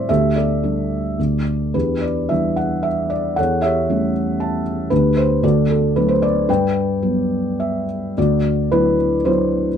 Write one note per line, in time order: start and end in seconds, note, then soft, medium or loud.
0.00 0.10 A2 soft
0.00 0.11 G3 soft
0.00 0.11 A3 soft
0.00 0.10 C4 soft
0.00 0.11 E4 soft
0.00 0.10 A4 medium
0.00 0.11 C5 medium
0.00 0.11 D5 medium
0.00 0.09 E5 medium
0.09 1.15 D2 soft
0.09 0.36 G4 soft
0.09 0.35 A4 soft
0.09 0.37 E5 medium
0.36 1.43 G4 soft
0.36 1.43 A4 soft
0.36 1.42 D5 medium
0.63 1.17 G3 soft
0.63 1.17 A3 soft
0.63 1.17 D4 soft
1.19 1.73 D2 soft
1.74 3.34 E2 soft
1.74 2.29 D4 soft
1.74 2.54 G4 soft
1.74 2.04 B4 soft
2.02 2.31 D5 medium
2.29 3.35 E3 soft
2.29 3.35 G3 soft
2.29 3.35 D4 soft
2.29 2.58 E5 medium
2.56 2.85 F#5 medium
2.83 3.11 E5 medium
3.10 3.35 D5 medium
3.36 4.87 E2 soft
3.36 4.10 A4 soft
3.36 3.62 C#5 soft
3.36 3.64 F#5 medium
3.62 4.61 G4 soft
3.62 4.61 C#5 soft
3.62 4.60 E5 medium
3.89 4.88 G3 soft
3.89 4.88 A3 soft
3.89 4.88 C#4 soft
4.40 4.88 A5 soft
4.90 5.41 D2 medium
4.90 5.40 D4 soft
4.90 5.40 G4 soft
4.90 5.18 B4 medium
5.17 5.44 C5 medium
5.43 6.45 D2 soft
5.43 6.18 F#4 soft
5.43 5.68 A4 soft
5.43 5.70 D5 medium
5.69 5.97 A4 medium
5.96 6.47 F#3 soft
5.96 6.48 A3 soft
5.96 6.48 D4 soft
5.96 6.10 B4 medium
6.08 6.22 C5 medium
6.22 6.47 D5 medium
6.49 8.13 G2 soft
6.49 7.85 B4 soft
6.49 7.85 D5 soft
6.49 7.85 G5 medium
7.02 8.14 F#3 soft
7.02 8.14 G3 soft
7.02 8.14 B3 soft
7.60 8.19 E5 soft
8.17 9.74 D2 soft
8.17 8.96 F#4 soft
8.17 8.68 D5 medium
8.71 9.15 F#3 soft
8.71 9.15 D4 soft
8.71 9.15 E4 soft
8.71 9.27 B4 medium
9.25 9.67 F#3 soft
9.25 9.68 D4 soft
9.25 9.68 E4 soft
9.25 9.77 C5 medium